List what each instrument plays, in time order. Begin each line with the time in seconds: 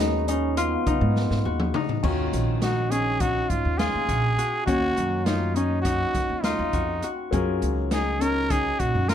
Already playing: upright bass D#2, grand piano G#3 F#4 A#4 B4, harp C#4 F4, flugelhorn D#4
0.00 harp D#4
0.28 flugelhorn C#4, harp D#4, closed hi-hat
0.57 flugelhorn B3, harp F4, closed hi-hat
0.86 upright bass C#3, harp D#4, kick, closed hi-hat
1.01 upright bass G#2
1.16 snare
1.31 upright bass G#2, snare
1.45 upright bass D#2, harp F#4
1.60 mid tom
1.74 harp D#4, mid tom
1.89 floor tom
2.03 upright bass D#2, grand piano D#3 C#4 F4 F#4, harp C#4, kick, crash
2.33 upright bass A#1, snare, closed hi-hat
2.62 harp D#4, trumpet F#4, snare, closed hi-hat
2.91 harp C#4, trumpet G#4, closed hi-hat
3.20 harp D#4, trumpet F#4, kick, closed hi-hat
3.49 upright bass G#2, trumpet F4, kick, closed hi-hat
3.65 upright bass D#2
3.78 harp F4, trumpet G#4, snare, closed hi-hat
3.94 upright bass D#2
4.08 upright bass A#1, harp F#4, kick, closed hi-hat
4.38 harp F#4, closed hi-hat
4.66 upright bass D#2, grand piano D#3 A#3 C#4 F#4, harp C#4, trumpet F#4, kick, closed hi-hat
4.97 upright bass F#2, closed hi-hat
5.25 harp D#4, trumpet F4, snare, closed hi-hat
5.55 harp C#4, trumpet D#4, closed hi-hat
5.82 harp D#4, trumpet F#4, kick, closed hi-hat
6.15 upright bass D#2, kick, snare, closed hi-hat
6.29 upright bass D#2
6.43 trumpet D#4, harp F4, snare, closed hi-hat
6.59 upright bass D#2
6.73 upright bass F2, harp F#4, kick, closed hi-hat
7.02 harp F#4, closed hi-hat
7.31 upright bass F#2, grand piano F#3 F4 G#4 A#4, harp C#4, kick, closed hi-hat
7.62 upright bass C#2, closed hi-hat
7.91 harp D#4, trumpet G#4, snare, closed hi-hat
8.21 harp C#4, trumpet A#4, closed hi-hat
8.50 harp D#4, trumpet G#4, kick, closed hi-hat
8.79 upright bass A#2, trumpet F#4, kick, closed hi-hat
8.95 upright bass F#2
9.09 harp F4, trumpet A#4, snare, closed hi-hat